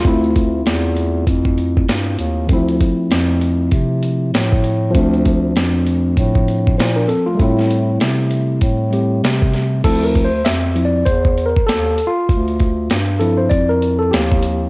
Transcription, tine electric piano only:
0.01 2.45 A3 medium
0.01 2.44 F4 medium
0.05 2.46 C4 medium
0.05 2.47 E4 medium
2.47 2.56 E3 medium
2.47 4.90 A3 medium
2.51 4.89 F3 medium
2.51 4.91 C4 medium
2.51 4.92 E4 medium
4.90 7.33 F3 medium
4.90 6.74 A3 medium
4.95 6.75 C4 medium
4.95 6.76 D4 medium
6.78 6.96 E4 soft
6.78 6.96 C5 medium
6.96 7.08 D4 medium
6.96 7.08 A#4 medium
7.08 7.26 C4 medium
7.08 7.26 A4 medium
7.26 7.36 A3 soft
7.26 7.56 F4 medium
7.35 8.87 G3 medium
7.35 8.88 A3 medium
7.39 8.89 C4 medium
7.39 8.90 E4 medium
8.90 9.83 G3 medium
8.90 9.84 A3 soft
8.90 9.83 C4 soft
8.90 9.85 G4 medium
9.84 10.27 F3 soft
9.84 10.28 C4 soft
9.84 10.28 E4 medium
9.84 10.05 A4 loud
10.04 10.26 A#4 medium
10.25 10.46 C5 medium
10.45 10.83 E5 medium
10.75 11.03 F3 soft
10.75 11.03 C4 soft
10.75 11.03 E4 soft
10.85 11.07 D5 medium
11.06 11.48 C5 medium
11.46 11.66 A#4 medium
11.67 12.09 A4 medium
12.07 12.96 F4 medium
13.19 14.70 F3 soft
13.19 14.70 C4 soft
13.19 14.70 E4 medium
13.19 13.37 A4 medium
13.38 13.50 C5 medium
13.50 13.70 D5 medium
13.69 14.01 A#4 medium
13.99 14.12 A4 medium
14.11 14.70 G4 medium

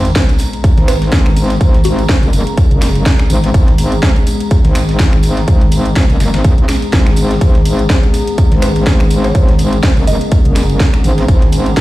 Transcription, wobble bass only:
0.00 0.14 G#1 loud
0.16 0.27 G#1 loud
0.78 1.11 G#1 medium
1.12 1.59 G#1 medium
1.61 2.07 G#1 loud
2.09 2.21 G#1 loud
2.23 2.45 F#1 loud
2.71 3.04 F#1 medium
3.30 3.53 G#1 medium
3.54 4.01 G#1 loud
4.03 4.14 G#1 loud
4.65 4.98 G#1 loud
4.99 5.46 G#1 medium
5.48 5.94 G#1 medium
5.96 6.08 G#1 loud
6.10 6.32 F#1 loud
6.34 6.67 G#1 loud
6.93 7.40 G#1 loud
7.41 7.88 G#1 loud
7.90 8.01 G#1 loud
8.52 8.85 G#1 medium
8.87 9.33 G#1 loud
9.35 9.82 G#1 medium
9.83 9.95 G#1 loud
9.97 10.19 F#1 loud
10.45 10.78 F#1 loud
11.04 11.27 G#1 medium
11.28 11.75 G#1 loud
11.77 11.81 G#1 loud

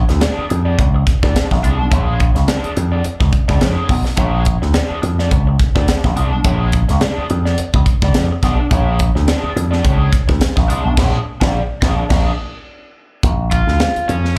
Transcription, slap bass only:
0.10 0.20 D2 medium
0.38 muted slap bass stroke soft
0.51 0.75 F2 loud
0.79 1.03 C#2 medium
1.23 1.34 D2 medium
1.51 1.62 A#1 medium
1.65 1.80 C2 loud
1.80 1.90 B1 medium
1.92 2.30 A#1 loud
2.36 2.46 C#2 medium
2.64 muted slap bass stroke soft
2.77 3.01 F2 loud
3.05 muted slap bass stroke soft
3.21 3.32 C#2 medium
3.49 3.60 C#2 medium
3.61 3.75 F2 loud
3.90 4.03 B1 medium
4.17 4.56 A#1 loud
4.62 4.73 D2 medium
4.90 muted slap bass stroke soft
5.03 5.27 F2 medium
5.31 5.56 C#2 loud
5.76 5.87 D2 medium
6.04 6.15 A#1 medium
6.16 6.33 C2 medium
6.33 6.43 B1 medium
6.45 6.83 A#1 loud
6.90 7.00 C#2 medium
7.18 muted slap bass stroke medium
7.30 7.54 F2 loud
7.58 muted slap bass stroke soft
7.74 7.85 C#2 loud
8.03 8.13 C#2 medium
8.15 8.28 F2 medium
8.43 8.57 B1 loud
8.71 9.09 A#1 loud
9.16 9.26 D2 medium
9.43 muted slap bass stroke soft
9.56 9.81 F2 loud
9.84 10.09 C#2 medium
10.29 10.39 D2 medium
10.57 10.70 A#1 medium
10.70 10.83 C2 loud
10.85 10.96 B1 medium
10.98 11.17 A#1 loud
11.41 11.60 A#1 loud
11.82 12.02 A#1 loud
12.11 12.30 A#1 loud
13.24 13.62 A#1 loud
13.67 13.78 D2 medium
13.96 muted slap bass stroke soft
14.09 14.33 F2 medium

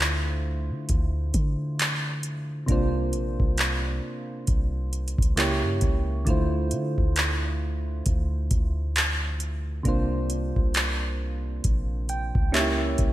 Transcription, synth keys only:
0.00 2.64 D3 medium
0.00 2.64 A3 medium
0.00 2.65 E4 medium
0.00 2.66 F4 medium
0.00 2.66 C5 medium
2.66 5.32 C3 medium
2.66 5.33 A#3 medium
2.66 5.34 D4 medium
2.71 5.34 F4 medium
2.71 5.35 C5 medium
5.36 6.26 C#3 medium
5.36 6.27 A#3 medium
5.36 6.26 E4 medium
5.36 6.27 G4 medium
5.36 6.28 C#5 medium
6.25 9.80 D3 medium
6.25 9.81 A3 medium
6.25 9.81 E4 medium
6.25 9.82 F4 medium
6.30 9.83 C5 medium
9.83 12.49 C3 medium
9.83 12.50 A#3 medium
9.83 12.50 D4 medium
9.83 12.51 F4 medium
9.89 12.52 C5 medium
12.09 12.51 G5 medium
12.52 13.13 A#3 medium
12.52 13.13 C#4 medium
12.52 12.61 D#4 medium
12.52 13.13 G4 medium
12.52 13.13 C#5 medium
12.52 13.13 E5 medium
12.60 13.13 E4 medium

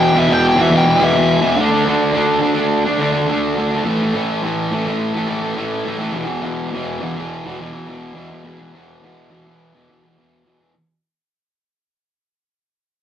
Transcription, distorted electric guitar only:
0.00 0.12 E2 medium
0.00 0.13 B2 loud
0.00 0.15 E3 loud
0.13 0.57 E2 medium
0.13 0.31 B2 medium
0.13 0.27 E3 medium
0.28 0.58 B2 medium
0.28 0.55 E3 medium
0.56 0.71 B2 medium
0.56 0.72 E3 medium
0.70 0.95 E2 medium
0.70 0.86 B2 medium
0.70 0.82 E3 medium
0.84 0.98 B2 medium
0.84 0.99 E3 medium
0.97 1.41 E2 loud
0.97 1.16 B2 loud
0.97 1.12 E3 loud
1.14 1.44 B2 medium
1.14 1.40 E3 medium
1.41 1.55 E3 medium
1.46 1.56 B2 medium
1.56 1.84 D3 medium
1.56 1.74 A3 medium
1.61 1.69 D4 medium
1.70 1.87 A3 medium
1.70 1.87 D4 medium
1.85 2.12 D3 medium
1.85 2.15 A3 medium
1.85 2.16 D4 medium
2.13 2.39 D3 medium
2.13 2.42 A3 loud
2.17 2.43 D4 loud
2.40 2.84 D3 medium
2.40 2.58 A3 medium
2.40 2.53 D4 medium
2.55 2.84 D4 medium
2.59 2.87 A3 medium
2.85 2.98 A3 medium
2.85 3.00 D4 medium
2.97 3.26 D3 medium
2.97 3.14 A3 medium
2.97 3.11 D4 medium
3.12 3.28 A3 medium
3.12 3.30 D4 medium
3.27 3.54 D3 medium
3.27 3.57 A3 loud
3.31 3.59 D4 loud
3.55 3.83 D3 medium
3.55 3.74 A3 medium
3.60 3.70 D4 medium
3.71 3.83 D4 medium
3.75 3.85 A3 medium
3.84 4.12 A2 loud
3.84 4.03 E3 loud
3.84 3.98 A3 loud
4.00 4.15 E3 medium
4.00 4.16 A3 medium
4.14 4.41 A2 medium
4.14 4.44 E3 medium
4.14 4.45 A3 medium
4.43 4.69 A2 medium
4.43 4.73 E3 loud
4.43 4.73 A3 loud
4.71 5.14 A2 medium
4.71 4.88 E3 medium
4.71 4.85 A3 medium
4.86 5.17 E3 medium
4.86 5.13 A3 medium
5.14 5.28 E3 medium
5.14 5.29 A3 medium
5.27 5.53 A2 medium
5.27 5.45 E3 medium
5.27 5.40 A3 medium
5.41 5.56 E3 medium
5.41 5.57 A3 medium
5.55 5.84 A2 medium
5.55 5.86 E3 loud
5.55 5.87 A3 loud
5.85 6.12 A2 medium
5.85 6.02 E3 medium
5.85 5.98 A3 medium
5.99 6.15 E3 medium
5.99 6.12 A3 medium
6.12 6.42 E2 medium
6.12 6.29 B2 loud
6.12 6.26 E3 loud
6.26 6.43 B2 medium
6.26 6.45 E3 medium
6.42 6.71 E2 medium
6.42 6.72 B2 medium
6.42 6.74 E3 medium
6.71 6.99 E2 loud
6.71 7.00 B2 loud
6.71 7.02 E3 loud
6.99 7.59 E2 medium
6.99 7.18 B2 medium
6.99 7.15 E3 medium
7.16 7.47 B2 medium
7.16 7.45 E3 medium
7.46 7.60 B2 medium
7.46 7.62 E3 medium
7.60 7.87 E2 medium
7.60 7.75 B2 medium
7.60 7.72 E3 medium
7.73 7.87 B2 medium
7.73 7.89 E3 medium
7.87 8.13 E2 medium
7.87 8.14 B2 loud
7.87 8.17 E3 loud
8.14 8.42 E2 medium
8.14 8.32 B2 medium
8.14 8.28 E3 medium
8.29 8.43 B2 medium
8.29 8.45 E3 medium
8.43 8.72 E2 medium
8.43 8.59 B2 loud
8.43 8.57 E3 medium
8.58 8.73 B2 medium
8.58 8.74 E3 medium
8.73 9.01 E2 medium
8.73 9.03 B2 medium
8.73 9.04 E3 medium
9.02 9.28 E2 medium
9.02 9.29 B2 loud
9.02 9.31 E3 loud
9.29 9.73 E2 medium
9.29 9.46 B2 medium
9.29 9.43 E3 medium
9.44 9.76 B2 medium
9.44 9.72 E3 medium
9.74 9.89 B2 medium
9.74 9.90 E3 medium
9.89 10.15 E2 medium
9.89 10.05 B2 medium
9.89 10.01 E3 medium
10.03 10.18 E3 medium
10.07 10.17 B2 medium
10.17 10.43 E2 medium
10.17 10.45 B2 loud
10.17 10.46 E3 loud
10.44 10.72 E2 medium
10.44 10.61 B2 medium
10.44 10.58 E3 medium
10.59 10.73 B2 medium
10.59 10.72 E3 medium

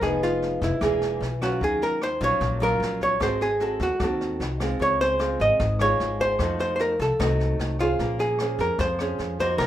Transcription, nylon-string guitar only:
0.02 0.79 F3 medium
0.02 0.78 B3 medium
0.02 0.78 D#4 medium
0.02 0.78 G#4 medium
0.82 1.59 E3 medium
0.82 1.21 A#3 medium
0.82 1.21 D4 medium
0.82 1.21 G#4 medium
1.42 1.98 F#3 medium
1.42 1.98 C#4 medium
1.42 1.99 F4 medium
1.61 2.38 D#3 medium
2.21 2.57 F#3 medium
2.21 2.58 C#4 medium
2.21 2.58 F4 medium
2.40 3.18 A#2 medium
2.60 3.19 F#3 medium
2.60 3.19 C#4 medium
2.60 3.19 F4 medium
3.20 3.98 G#3 medium
3.20 3.46 C4 medium
3.20 3.46 F#4 medium
3.20 3.46 A4 medium
3.61 3.86 C4 medium
3.61 3.86 F#4 medium
3.61 3.87 A4 medium
4.02 4.79 D#3 medium
4.02 4.41 C4 medium
4.02 4.41 F#4 medium
4.02 4.41 A4 medium
4.61 5.18 G#3 medium
4.61 5.19 C4 medium
4.61 5.19 F4 medium
4.79 5.58 C#3 medium
5.19 5.59 G#3 medium
5.19 5.59 C4 medium
5.19 5.60 F4 medium
5.60 6.38 G#2 medium
5.80 6.37 G#3 medium
5.80 6.37 F4 medium
6.40 7.18 F3 medium
6.40 6.94 A3 medium
6.40 6.94 D#4 medium
6.40 6.94 F#4 medium
7.19 7.97 C3 medium
7.19 7.76 A3 medium
7.19 7.76 D#4 medium
7.19 7.77 F#4 medium
7.80 8.36 C#4 medium
7.80 8.37 G#4 medium
7.80 8.37 C5 medium
8.01 8.78 A#3 medium
8.41 8.80 C#4 medium
8.41 8.80 G#4 medium
8.41 8.80 C5 medium
8.81 9.58 F3 medium
9.01 9.37 C#4 medium
9.01 9.37 G#4 medium
9.01 9.37 C5 medium
9.41 9.67 A#3 medium
9.41 9.67 D#4 medium
9.41 9.67 F#4 medium
9.60 9.67 C3 soft

